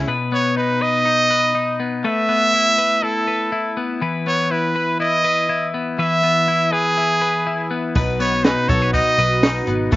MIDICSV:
0, 0, Header, 1, 6, 480
1, 0, Start_track
1, 0, Tempo, 492611
1, 70, Time_signature, 4, 2, 24, 8
1, 9708, End_track
2, 0, Start_track
2, 0, Title_t, "Trumpet"
2, 0, Program_c, 0, 56
2, 325, Note_on_c, 0, 73, 95
2, 542, Note_off_c, 0, 73, 0
2, 560, Note_on_c, 0, 71, 93
2, 799, Note_on_c, 0, 75, 114
2, 814, Note_off_c, 0, 71, 0
2, 1756, Note_off_c, 0, 75, 0
2, 1996, Note_on_c, 0, 76, 120
2, 2956, Note_on_c, 0, 69, 95
2, 2971, Note_off_c, 0, 76, 0
2, 3675, Note_off_c, 0, 69, 0
2, 4160, Note_on_c, 0, 73, 99
2, 4396, Note_on_c, 0, 71, 90
2, 4411, Note_off_c, 0, 73, 0
2, 4867, Note_off_c, 0, 71, 0
2, 4873, Note_on_c, 0, 75, 108
2, 5554, Note_off_c, 0, 75, 0
2, 5835, Note_on_c, 0, 76, 110
2, 6556, Note_on_c, 0, 68, 105
2, 6570, Note_off_c, 0, 76, 0
2, 7514, Note_off_c, 0, 68, 0
2, 7991, Note_on_c, 0, 73, 98
2, 8230, Note_on_c, 0, 71, 92
2, 8244, Note_off_c, 0, 73, 0
2, 8464, Note_on_c, 0, 73, 98
2, 8479, Note_off_c, 0, 71, 0
2, 8699, Note_off_c, 0, 73, 0
2, 8705, Note_on_c, 0, 75, 103
2, 9388, Note_off_c, 0, 75, 0
2, 9708, End_track
3, 0, Start_track
3, 0, Title_t, "Clean electric guitar"
3, 0, Program_c, 1, 27
3, 0, Note_on_c, 1, 61, 63
3, 0, Note_on_c, 1, 64, 52
3, 75, Note_on_c, 1, 47, 72
3, 80, Note_on_c, 1, 71, 67
3, 119, Note_off_c, 1, 61, 0
3, 121, Note_off_c, 1, 64, 0
3, 312, Note_on_c, 1, 59, 62
3, 550, Note_on_c, 1, 63, 59
3, 786, Note_off_c, 1, 71, 0
3, 790, Note_on_c, 1, 71, 72
3, 1015, Note_off_c, 1, 63, 0
3, 1027, Note_on_c, 1, 63, 66
3, 1266, Note_off_c, 1, 71, 0
3, 1270, Note_on_c, 1, 71, 72
3, 1498, Note_off_c, 1, 63, 0
3, 1510, Note_on_c, 1, 63, 68
3, 1748, Note_off_c, 1, 59, 0
3, 1752, Note_on_c, 1, 59, 59
3, 1992, Note_on_c, 1, 57, 79
3, 1993, Note_off_c, 1, 71, 0
3, 1995, Note_off_c, 1, 47, 0
3, 1997, Note_on_c, 1, 71, 60
3, 2040, Note_off_c, 1, 63, 0
3, 2225, Note_off_c, 1, 59, 0
3, 2229, Note_on_c, 1, 59, 63
3, 2471, Note_on_c, 1, 64, 61
3, 2708, Note_off_c, 1, 71, 0
3, 2712, Note_on_c, 1, 71, 72
3, 2947, Note_off_c, 1, 64, 0
3, 2950, Note_on_c, 1, 64, 68
3, 3187, Note_off_c, 1, 71, 0
3, 3191, Note_on_c, 1, 71, 65
3, 3428, Note_off_c, 1, 64, 0
3, 3431, Note_on_c, 1, 64, 72
3, 3669, Note_off_c, 1, 59, 0
3, 3673, Note_on_c, 1, 59, 58
3, 3913, Note_off_c, 1, 57, 0
3, 3913, Note_on_c, 1, 52, 76
3, 3917, Note_off_c, 1, 71, 0
3, 3920, Note_on_c, 1, 71, 63
3, 4153, Note_off_c, 1, 59, 0
3, 4157, Note_on_c, 1, 59, 62
3, 4392, Note_off_c, 1, 64, 0
3, 4396, Note_on_c, 1, 64, 61
3, 4630, Note_off_c, 1, 71, 0
3, 4634, Note_on_c, 1, 71, 69
3, 4861, Note_off_c, 1, 64, 0
3, 4872, Note_on_c, 1, 64, 66
3, 5107, Note_off_c, 1, 71, 0
3, 5110, Note_on_c, 1, 71, 74
3, 5342, Note_off_c, 1, 64, 0
3, 5353, Note_on_c, 1, 64, 75
3, 5590, Note_off_c, 1, 59, 0
3, 5594, Note_on_c, 1, 59, 58
3, 5821, Note_off_c, 1, 52, 0
3, 5833, Note_on_c, 1, 52, 83
3, 5836, Note_off_c, 1, 71, 0
3, 5840, Note_on_c, 1, 71, 64
3, 6070, Note_off_c, 1, 59, 0
3, 6073, Note_on_c, 1, 59, 61
3, 6304, Note_off_c, 1, 64, 0
3, 6315, Note_on_c, 1, 64, 65
3, 6549, Note_off_c, 1, 71, 0
3, 6553, Note_on_c, 1, 71, 69
3, 6783, Note_off_c, 1, 64, 0
3, 6795, Note_on_c, 1, 64, 64
3, 7028, Note_off_c, 1, 71, 0
3, 7032, Note_on_c, 1, 71, 75
3, 7264, Note_off_c, 1, 64, 0
3, 7276, Note_on_c, 1, 64, 65
3, 7506, Note_off_c, 1, 59, 0
3, 7510, Note_on_c, 1, 59, 60
3, 7752, Note_off_c, 1, 52, 0
3, 7752, Note_on_c, 1, 47, 73
3, 7753, Note_off_c, 1, 71, 0
3, 7757, Note_on_c, 1, 71, 64
3, 7802, Note_off_c, 1, 64, 0
3, 7989, Note_off_c, 1, 59, 0
3, 7993, Note_on_c, 1, 59, 64
3, 8231, Note_on_c, 1, 63, 64
3, 8470, Note_off_c, 1, 71, 0
3, 8473, Note_on_c, 1, 69, 74
3, 8595, Note_off_c, 1, 69, 0
3, 8595, Note_on_c, 1, 71, 52
3, 8700, Note_off_c, 1, 63, 0
3, 8711, Note_on_c, 1, 63, 70
3, 8941, Note_off_c, 1, 71, 0
3, 8953, Note_on_c, 1, 71, 76
3, 9179, Note_off_c, 1, 63, 0
3, 9191, Note_on_c, 1, 63, 74
3, 9423, Note_off_c, 1, 59, 0
3, 9427, Note_on_c, 1, 59, 57
3, 9670, Note_off_c, 1, 47, 0
3, 9671, Note_on_c, 1, 57, 82
3, 9673, Note_off_c, 1, 71, 0
3, 9677, Note_on_c, 1, 71, 61
3, 9708, Note_off_c, 1, 57, 0
3, 9708, Note_off_c, 1, 59, 0
3, 9708, Note_off_c, 1, 63, 0
3, 9708, Note_off_c, 1, 71, 0
3, 9708, End_track
4, 0, Start_track
4, 0, Title_t, "Twelve-string acoustic guitar"
4, 0, Program_c, 2, 25
4, 7748, Note_on_c, 2, 47, 86
4, 7754, Note_on_c, 2, 54, 89
4, 7759, Note_on_c, 2, 59, 92
4, 7762, Note_on_c, 2, 63, 107
4, 7768, Note_on_c, 2, 66, 82
4, 8092, Note_off_c, 2, 66, 0
4, 8104, Note_on_c, 2, 66, 57
4, 8106, Note_off_c, 2, 63, 0
4, 8110, Note_off_c, 2, 47, 0
4, 8112, Note_off_c, 2, 54, 0
4, 8115, Note_off_c, 2, 59, 0
4, 8118, Note_on_c, 2, 63, 52
4, 8131, Note_on_c, 2, 59, 43
4, 8461, Note_on_c, 2, 54, 71
4, 8463, Note_off_c, 2, 59, 0
4, 8467, Note_off_c, 2, 66, 0
4, 8471, Note_off_c, 2, 63, 0
4, 8475, Note_on_c, 2, 59, 57
4, 8483, Note_on_c, 2, 63, 68
4, 8493, Note_on_c, 2, 66, 73
4, 8929, Note_off_c, 2, 54, 0
4, 8940, Note_on_c, 2, 54, 60
4, 8946, Note_off_c, 2, 59, 0
4, 8946, Note_off_c, 2, 63, 0
4, 8949, Note_on_c, 2, 59, 53
4, 8957, Note_off_c, 2, 66, 0
4, 8957, Note_on_c, 2, 63, 61
4, 9171, Note_off_c, 2, 54, 0
4, 9183, Note_on_c, 2, 54, 66
4, 9185, Note_off_c, 2, 59, 0
4, 9191, Note_off_c, 2, 63, 0
4, 9197, Note_on_c, 2, 59, 55
4, 9203, Note_on_c, 2, 63, 57
4, 9209, Note_on_c, 2, 66, 69
4, 9652, Note_off_c, 2, 54, 0
4, 9656, Note_on_c, 2, 57, 71
4, 9660, Note_off_c, 2, 59, 0
4, 9664, Note_on_c, 2, 59, 84
4, 9665, Note_off_c, 2, 63, 0
4, 9669, Note_on_c, 2, 64, 90
4, 9670, Note_off_c, 2, 66, 0
4, 9674, Note_on_c, 2, 69, 97
4, 9708, Note_off_c, 2, 57, 0
4, 9708, Note_off_c, 2, 59, 0
4, 9708, Note_off_c, 2, 64, 0
4, 9708, Note_off_c, 2, 69, 0
4, 9708, End_track
5, 0, Start_track
5, 0, Title_t, "Picked electric bass"
5, 0, Program_c, 3, 34
5, 7754, Note_on_c, 3, 35, 104
5, 8323, Note_off_c, 3, 35, 0
5, 8473, Note_on_c, 3, 35, 96
5, 8778, Note_off_c, 3, 35, 0
5, 8948, Note_on_c, 3, 35, 88
5, 9356, Note_off_c, 3, 35, 0
5, 9431, Note_on_c, 3, 32, 96
5, 9634, Note_off_c, 3, 32, 0
5, 9672, Note_on_c, 3, 33, 111
5, 9708, Note_off_c, 3, 33, 0
5, 9708, End_track
6, 0, Start_track
6, 0, Title_t, "Drums"
6, 7750, Note_on_c, 9, 46, 87
6, 7753, Note_on_c, 9, 36, 106
6, 7848, Note_off_c, 9, 46, 0
6, 7850, Note_off_c, 9, 36, 0
6, 7991, Note_on_c, 9, 44, 80
6, 7992, Note_on_c, 9, 46, 73
6, 8088, Note_off_c, 9, 44, 0
6, 8089, Note_off_c, 9, 46, 0
6, 8226, Note_on_c, 9, 46, 72
6, 8230, Note_on_c, 9, 38, 124
6, 8231, Note_on_c, 9, 44, 68
6, 8324, Note_off_c, 9, 46, 0
6, 8328, Note_off_c, 9, 38, 0
6, 8329, Note_off_c, 9, 44, 0
6, 8467, Note_on_c, 9, 46, 67
6, 8468, Note_on_c, 9, 44, 71
6, 8470, Note_on_c, 9, 36, 108
6, 8565, Note_off_c, 9, 46, 0
6, 8566, Note_off_c, 9, 44, 0
6, 8567, Note_off_c, 9, 36, 0
6, 8708, Note_on_c, 9, 44, 72
6, 8708, Note_on_c, 9, 46, 84
6, 8710, Note_on_c, 9, 36, 91
6, 8805, Note_off_c, 9, 44, 0
6, 8805, Note_off_c, 9, 46, 0
6, 8807, Note_off_c, 9, 36, 0
6, 8948, Note_on_c, 9, 46, 67
6, 8949, Note_on_c, 9, 44, 68
6, 9045, Note_off_c, 9, 46, 0
6, 9046, Note_off_c, 9, 44, 0
6, 9186, Note_on_c, 9, 44, 65
6, 9189, Note_on_c, 9, 38, 111
6, 9192, Note_on_c, 9, 46, 93
6, 9283, Note_off_c, 9, 44, 0
6, 9287, Note_off_c, 9, 38, 0
6, 9289, Note_off_c, 9, 46, 0
6, 9423, Note_on_c, 9, 46, 78
6, 9424, Note_on_c, 9, 44, 63
6, 9521, Note_off_c, 9, 46, 0
6, 9522, Note_off_c, 9, 44, 0
6, 9665, Note_on_c, 9, 44, 66
6, 9666, Note_on_c, 9, 46, 91
6, 9669, Note_on_c, 9, 36, 112
6, 9708, Note_off_c, 9, 36, 0
6, 9708, Note_off_c, 9, 44, 0
6, 9708, Note_off_c, 9, 46, 0
6, 9708, End_track
0, 0, End_of_file